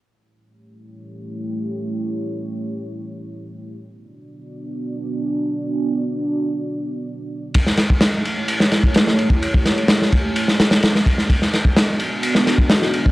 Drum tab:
RD |----------------|----------------|----------------|----------------|
SD |----------------|----------------|----------------|----------------|
BD |----------------|----------------|----------------|----------------|

RD |x-x-x-x-x-x-x-x-|x-xxx-x-x-xxx-x-|x-x-x-x-x-x-x-x-|
SD |-oo-o----oo-oo--|--o-oo---ooooo-o|-oo-o----oo-oo--|
BD |o--o-------o---o|-o----o-------o-|o--o-------o---o|